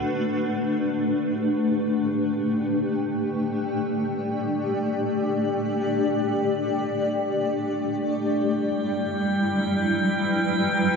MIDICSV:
0, 0, Header, 1, 3, 480
1, 0, Start_track
1, 0, Tempo, 500000
1, 10524, End_track
2, 0, Start_track
2, 0, Title_t, "Synth texture"
2, 0, Program_c, 0, 99
2, 7643, Note_on_c, 0, 79, 73
2, 10524, Note_off_c, 0, 79, 0
2, 10524, End_track
3, 0, Start_track
3, 0, Title_t, "Ambient pad"
3, 0, Program_c, 1, 92
3, 0, Note_on_c, 1, 57, 80
3, 0, Note_on_c, 1, 62, 69
3, 0, Note_on_c, 1, 71, 76
3, 881, Note_on_c, 1, 67, 72
3, 2072, Note_on_c, 1, 79, 65
3, 2329, Note_off_c, 1, 71, 0
3, 3074, Note_on_c, 1, 74, 78
3, 7630, Note_off_c, 1, 67, 0
3, 7633, Note_off_c, 1, 57, 0
3, 7633, Note_on_c, 1, 55, 73
3, 7635, Note_off_c, 1, 79, 0
3, 7902, Note_on_c, 1, 64, 71
3, 8330, Note_on_c, 1, 54, 63
3, 9006, Note_off_c, 1, 62, 0
3, 9046, Note_on_c, 1, 79, 74
3, 9499, Note_on_c, 1, 71, 82
3, 10524, Note_off_c, 1, 54, 0
3, 10524, Note_off_c, 1, 55, 0
3, 10524, Note_off_c, 1, 64, 0
3, 10524, Note_off_c, 1, 71, 0
3, 10524, Note_off_c, 1, 74, 0
3, 10524, Note_off_c, 1, 79, 0
3, 10524, End_track
0, 0, End_of_file